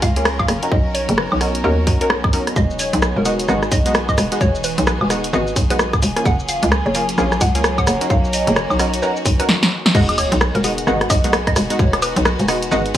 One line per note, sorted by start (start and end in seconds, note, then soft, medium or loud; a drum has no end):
0.00 0.47 C#2 medium
0.00 3.63 F#3 medium
0.00 2.53 C#4 medium
0.00 0.70 F4 medium
0.00 0.68 G#4 medium
0.00 2.53 A#4 medium
0.00 3.20 C#5 medium
0.00 0.23 F5 medium
0.00 1.46 G#5 medium
0.00 1.47 A#5 medium
0.00 kick loud
0.00 open hi-hat loud
0.16 0.26 A#3 medium
0.16 0.26 C#4 medium
0.16 0.26 F4 medium
0.16 0.26 G#4 loud
0.16 closed hi-hat medium
0.25 cross-stick loud
0.25 open hi-hat medium
0.39 0.58 F5 medium
0.39 kick medium
0.39 high woodblock medium
0.48 0.61 F#1 medium
0.48 cross-stick medium
0.48 open hi-hat loud
0.63 1.39 C#4 medium
0.63 1.39 D#4 medium
0.63 1.39 F#4 medium
0.63 1.39 A#4 medium
0.63 closed hi-hat medium
0.71 1.06 B1 medium
0.71 3.40 B3 medium
0.71 6.22 D#4 medium
0.71 2.54 F#4 medium
0.71 0.87 D#5 medium
0.71 kick loud
0.94 1.10 C#5 medium
0.94 open hi-hat loud
1.09 1.28 F#1 medium
1.09 closed hi-hat medium
1.18 1.45 B4 medium
1.18 cross-stick loud
1.32 1.62 B1 medium
1.32 high woodblock medium
1.41 1.62 C#4 medium
1.41 1.62 D#4 medium
1.41 1.62 F#4 medium
1.41 1.62 A#4 medium
1.41 cross-stick medium
1.41 open hi-hat medium
1.55 3.62 D#5 medium
1.55 closed hi-hat medium
1.64 1.89 D#2 medium
1.64 1.84 C#4 loud
1.64 1.84 D#4 medium
1.64 1.84 F#4 medium
1.64 1.84 A#4 medium
1.64 1.84 A#4 loud
1.87 2.44 B1 medium
1.87 1.99 C#4 medium
1.87 1.99 D#4 medium
1.87 1.99 F#4 medium
1.87 1.99 A#4 medium
1.87 kick loud
1.87 open hi-hat loud
2.01 2.10 C#4 medium
2.01 2.10 D#4 medium
2.01 2.10 F#4 medium
2.01 2.10 A#4 loud
2.01 2.49 A#4 medium
2.01 closed hi-hat medium
2.10 cross-stick loud
2.24 kick loud
2.24 cross-stick medium
2.24 high woodblock medium
2.33 2.47 C#4 medium
2.33 2.47 D#4 medium
2.33 2.47 F#4 medium
2.33 2.47 A#4 medium
2.33 open hi-hat loud
2.47 cross-stick soft
2.47 closed hi-hat medium
2.56 2.90 E1 loud
2.56 6.26 E3 medium
2.56 6.22 B3 medium
2.56 6.22 F#4 medium
2.56 8.06 G#4 medium
2.56 2.72 D#5 medium
2.56 kick loud
2.56 shaker soft
2.70 shaker soft
2.79 3.00 C#5 medium
2.79 open hi-hat loud
2.79 shaker medium
2.93 3.13 B1 loud
2.93 6.26 B4 medium
2.93 closed hi-hat medium
2.93 shaker soft
3.02 cross-stick loud
3.02 shaker soft
3.16 3.47 E1 medium
3.16 3.27 A#4 medium
3.25 3.46 G#3 medium
3.25 3.46 B3 medium
3.25 3.46 D#4 medium
3.25 3.46 F#4 medium
3.25 8.85 G#5 medium
3.25 open hi-hat loud
3.25 shaker medium
3.40 closed hi-hat medium
3.40 shaker soft
3.49 3.69 G#1 medium
3.49 3.68 G#3 loud
3.49 3.68 B3 medium
3.49 3.68 D#4 medium
3.49 3.68 F#4 loud
3.49 cross-stick soft
3.49 shaker soft
3.63 cross-stick medium
3.63 shaker soft
3.72 4.16 B1 medium
3.72 3.92 D#5 loud
3.72 kick loud
3.72 open hi-hat loud
3.72 shaker medium
3.86 3.95 G#3 medium
3.86 3.95 B3 medium
3.86 3.95 D#4 medium
3.86 3.95 F#4 loud
3.86 closed hi-hat medium
3.86 shaker soft
3.95 cross-stick loud
3.95 open hi-hat medium
3.95 shaker soft
4.09 4.28 D#5 loud
4.09 kick medium
4.09 high woodblock medium
4.09 shaker soft
4.18 4.30 E1 medium
4.18 cross-stick medium
4.18 open hi-hat loud
4.18 shaker medium
4.32 5.08 G#3 medium
4.32 5.08 B3 medium
4.32 5.08 D#4 medium
4.32 5.08 F#4 medium
4.32 closed hi-hat medium
4.32 shaker soft
4.41 4.75 E1 loud
4.41 4.56 C#5 medium
4.41 kick loud
4.41 shaker soft
4.55 shaker soft
4.64 4.79 B4 medium
4.64 open hi-hat loud
4.64 shaker medium
4.78 4.97 B1 loud
4.78 closed hi-hat medium
4.78 shaker soft
4.87 5.14 B4 medium
4.87 cross-stick loud
4.87 shaker soft
5.01 5.31 E1 medium
5.01 high woodblock medium
5.10 5.31 G#3 medium
5.10 5.31 B3 medium
5.10 5.31 D#4 medium
5.10 5.31 F#4 medium
5.10 cross-stick medium
5.10 open hi-hat loud
5.10 shaker medium
5.24 closed hi-hat medium
5.24 shaker soft
5.33 5.54 G#1 medium
5.33 5.53 G#3 loud
5.33 5.53 B3 medium
5.33 5.53 D#4 medium
5.33 5.53 F#4 loud
5.33 5.54 B4 loud
5.33 shaker soft
5.47 shaker soft
5.56 6.01 B1 medium
5.56 kick loud
5.56 open hi-hat loud
5.56 shaker medium
5.70 5.80 G#3 medium
5.70 5.80 B3 medium
5.70 5.80 D#4 medium
5.70 5.80 F#4 loud
5.70 6.18 B4 medium
5.70 closed hi-hat medium
5.70 shaker soft
5.79 cross-stick loud
5.79 shaker soft
5.93 kick loud
5.93 cross-stick soft
5.93 high woodblock medium
5.93 shaker soft
6.02 6.15 E1 medium
6.02 open hi-hat loud
6.02 shaker medium
6.16 6.93 A#3 medium
6.16 6.93 C#4 medium
6.16 6.93 F4 medium
6.16 6.93 G#4 medium
6.16 cross-stick soft
6.16 closed hi-hat medium
6.16 shaker soft
6.25 6.60 F#1 loud
6.25 9.49 F#3 medium
6.25 9.91 A#3 medium
6.25 9.91 C#4 medium
6.25 8.08 F4 medium
6.25 6.41 F#5 loud
6.25 kick loud
6.25 shaker soft
6.40 shaker soft
6.45 6.69 F5 loud
6.45 8.85 A#5 medium
6.45 open hi-hat loud
6.45 shaker medium
6.63 6.82 C#2 loud
6.63 closed hi-hat medium
6.63 shaker soft
6.68 9.49 C#5 medium
6.68 cross-stick loud
6.68 shaker soft
6.86 7.16 F#1 medium
6.86 6.97 C#5 medium
6.95 7.16 A#3 medium
6.95 7.16 C#4 medium
6.95 7.16 F4 medium
6.95 7.16 G#4 medium
6.95 open hi-hat loud
6.95 shaker medium
7.09 closed hi-hat medium
7.09 shaker soft
7.18 7.39 A#1 medium
7.18 7.38 A#3 medium
7.18 7.38 C#4 medium
7.18 7.38 F4 medium
7.18 7.38 G#4 loud
7.18 cross-stick medium
7.18 shaker soft
7.32 cross-stick medium
7.32 shaker soft
7.41 7.85 C#2 loud
7.41 7.61 F#5 medium
7.41 kick loud
7.41 open hi-hat loud
7.41 shaker medium
7.55 7.64 A#3 medium
7.55 7.64 C#4 medium
7.55 7.64 F4 medium
7.55 7.64 G#4 loud
7.55 closed hi-hat medium
7.55 shaker soft
7.64 cross-stick loud
7.64 open hi-hat medium
7.64 shaker soft
7.78 7.97 F#5 medium
7.78 kick medium
7.78 high woodblock medium
7.78 shaker soft
7.87 7.99 F#1 medium
7.87 cross-stick medium
7.87 open hi-hat loud
7.87 shaker medium
8.01 8.77 C#4 medium
8.01 8.77 D#4 medium
8.01 8.77 F#4 medium
8.01 8.77 A#4 medium
8.01 closed hi-hat medium
8.01 shaker soft
8.10 8.44 B1 loud
8.10 9.93 D#4 medium
8.10 9.93 F#4 medium
8.10 8.26 F5 medium
8.10 kick loud
8.10 shaker soft
8.24 shaker soft
8.33 8.49 D#5 medium
8.33 open hi-hat loud
8.33 shaker medium
8.47 8.67 F#1 loud
8.47 closed hi-hat medium
8.47 shaker soft
8.56 8.83 C#5 medium
8.56 cross-stick loud
8.56 shaker soft
8.70 9.01 B1 medium
8.70 high woodblock medium
8.70 shaker soft
8.79 9.00 C#4 medium
8.79 9.00 D#4 medium
8.79 9.00 F#4 medium
8.79 9.00 A#4 medium
8.79 cross-stick medium
8.79 open hi-hat loud
8.79 shaker medium
8.94 closed hi-hat medium
8.94 shaker soft
9.02 9.22 C#4 loud
9.02 9.22 D#4 medium
9.02 9.22 F#4 medium
9.02 9.22 A#4 loud
9.02 9.23 B4 medium
9.02 shaker soft
9.17 shaker soft
9.26 9.38 B1 medium
9.26 kick loud
9.26 open hi-hat loud
9.26 shaker medium
9.39 9.49 C#4 medium
9.39 9.49 D#4 medium
9.39 9.49 F#4 medium
9.39 9.49 A#4 loud
9.39 9.49 B4 medium
9.39 closed hi-hat medium
9.39 shaker soft
9.49 snare medium
9.63 snare medium
9.86 snare medium
9.95 10.29 E1 loud
9.95 10.60 G#3 loud
9.95 12.97 G#3 medium
9.95 10.60 B3 medium
9.95 12.97 B3 medium
9.95 10.60 D#4 medium
9.95 12.97 D#4 medium
9.95 10.60 F#4 loud
9.95 12.97 F#4 medium
9.95 10.10 D#5 loud
9.95 kick loud
9.95 crash loud
9.95 sub drop medium
9.95 shaker soft
10.09 closed hi-hat medium
10.09 high woodblock medium
10.18 10.38 C#5 loud
10.18 open hi-hat loud
10.18 high woodblock medium
10.18 shaker medium
10.32 10.51 B1 loud
10.32 closed hi-hat medium
10.32 shaker soft
10.41 cross-stick loud
10.41 shaker soft
10.55 10.85 E1 medium
10.55 10.66 A#4 medium
10.55 closed hi-hat soft
10.64 10.85 G#3 medium
10.64 10.85 B3 medium
10.64 10.85 D#4 medium
10.64 10.85 F#4 medium
10.64 open hi-hat loud
10.64 shaker medium
10.78 closed hi-hat medium
10.78 shaker soft
10.87 11.08 G#1 medium
10.87 11.07 G#3 loud
10.87 11.07 B3 medium
10.87 11.07 D#4 medium
10.87 11.07 F#4 loud
10.87 cross-stick medium
10.87 shaker soft
11.01 cross-stick medium
11.01 closed hi-hat soft
11.10 11.54 B1 medium
11.10 11.30 D#5 loud
11.10 kick loud
11.10 open hi-hat loud
11.10 high woodblock medium
11.10 shaker medium
11.24 11.34 G#3 medium
11.24 11.34 B3 medium
11.24 11.34 D#4 medium
11.24 11.34 F#4 loud
11.24 closed hi-hat medium
11.24 shaker soft
11.33 cross-stick loud
11.33 open hi-hat medium
11.33 shaker soft
11.47 11.66 D#5 medium
11.47 kick medium
11.47 cross-stick medium
11.47 closed hi-hat medium
11.56 11.69 E1 medium
11.56 cross-stick medium
11.56 open hi-hat loud
11.56 shaker medium
11.70 12.46 G#3 medium
11.70 12.46 B3 medium
11.70 12.46 D#4 medium
11.70 12.46 F#4 medium
11.70 closed hi-hat medium
11.70 shaker soft
11.79 12.14 E1 loud
11.79 11.95 C#5 medium
11.79 kick loud
11.79 shaker soft
11.93 cross-stick medium
11.93 closed hi-hat soft
11.93 high woodblock medium
12.02 12.18 B4 medium
12.02 open hi-hat loud
12.02 high woodblock medium
12.02 shaker medium
12.16 12.36 B1 loud
12.16 closed hi-hat medium
12.16 shaker soft
12.25 12.52 B4 medium
12.25 cross-stick loud
12.25 shaker soft
12.39 12.70 E1 medium
12.39 closed hi-hat soft
12.39 shaker soft
12.48 12.69 G#3 medium
12.48 12.69 B3 medium
12.48 12.69 D#4 medium
12.48 12.69 F#4 medium
12.48 cross-stick medium
12.48 open hi-hat loud
12.48 shaker medium
12.63 closed hi-hat medium
12.63 shaker soft
12.71 12.92 G#1 medium
12.71 12.91 G#3 loud
12.71 12.91 B3 medium
12.71 12.91 D#4 medium
12.71 12.91 F#4 loud
12.71 12.92 B4 medium
12.71 shaker soft
12.86 closed hi-hat soft